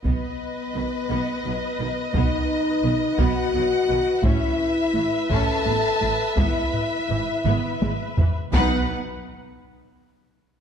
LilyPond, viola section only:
\new Staff \with { instrumentName = "Viola section" } { \time 6/8 \key b \mixolydian \tempo 4. = 57 << { b'2.~ | b'2. | b'2.~ | b'2~ b'8 r8 |
b'8 r2 r8 | } \\ { b8 r8 dis8 b8 fis8 dis8 | b8 r8 dis8 b8 fis8 dis8 | cis'8 r8 a8 cis'8 b8 a8 | b8 r8 e8 b8 gis8 e8 |
dis'8 r2 r8 | } >> }